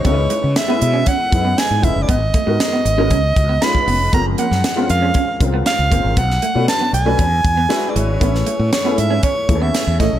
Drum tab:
HH |x-x-x-x-x-x-x-x-|x-x-x-x-x-x-x-o-|x-x-x-x-x-x-x-x-|x-x-x-x-x-x-x-x-|
SD |----o-------o---|----o-------o---|---oo-------o---|-o--o-------o---|
BD |o-------o-o---o-|o-o-----o-o--o--|o-------o-o---o-|o-------o-o-----|

HH |x-x-x-x-x-x-x-x-|
SD |-o--o-------o-o-|
BD |o-------o-o---o-|